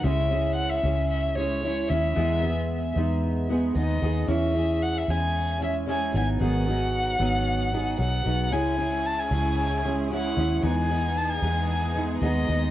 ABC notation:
X:1
M:4/4
L:1/16
Q:1/4=113
K:C#m
V:1 name="Violin"
e4 f e3 e2 c4 e2- | e6 z6 d4 | e4 f e g4 e2 g2 g2 | f12 f4 |
g4 a g3 g2 z2 f4 | g4 a g3 g2 z2 d4 |]
V:2 name="String section"
z16 | z16 | z16 | z16 |
[C,CEG]16 | [E,B,DG]16 |]
V:3 name="Steel-string acoustic guitar"
[C,G,CEG]2 [G,CEG]4 [G,CEG]4 [G,CEG]2 [G,CEG]2 [G,CEG]2 | [E,G,B,DG]2 [G,B,G]4 [G,B,DG]4 [G,B,DG]2 [G,B,DG]2 [G,B,DG]2 | [E,G,CEG]2 [G,CEG]4 [G,CEG]4 [G,CEG]2 [G,CEG]2 [F,B,DG]2 | [G,,D,F,B,DG]2 [F,B,DG]4 [F,B,DG]4 [F,B,DG]2 [F,B,DG]2 [F,B,DG]2 |
[C,G,CEG]2 [G,CEG]4 [G,CEG]4 [G,CEG]2 [G,CEG]2 [G,CEG]2 | [E,G,B,DG]2 [G,B,DG]4 [G,B,DG]4 [G,B,DG]2 [G,B,DG]2 [G,B,DG]2 |]
V:4 name="Fingered electric bass" clef=bass
C,,6 C,,8 D,,2 | E,,6 E,,6 D,,2 D,,2 | E,,6 E,,8 G,,,2 | G,,,6 G,,,6 B,,,2 B,,,2 |
C,,6 C,,8 D,,2 | E,,6 E,,6 D,,2 D,,2 |]